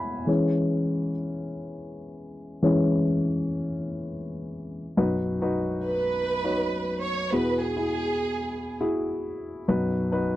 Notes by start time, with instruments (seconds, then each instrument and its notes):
Already playing: upright piano E4 G#4 E5 F#5 G#5 B5
0.27 upright piano E3 G#3 C#4
2.62 upright piano E3 G#3 C#4
4.97 upright piano B1 F#2 D#4 F#4 B4
5.42 upright piano D#4 F#4 B4
5.86 violin section B4
6.44 upright piano D#4 F#4 C#5
7.04 violin section C#5
7.32 upright piano E2 B2 E4 F#4 G#4, violin section B4
7.64 violin section G#4
7.77 upright piano E4 F#4 G#4
8.81 upright piano E4 F#4 G#4
9.68 upright piano B1 F#2 D#4 F#4 B4
10.12 upright piano D#4 F#4 B4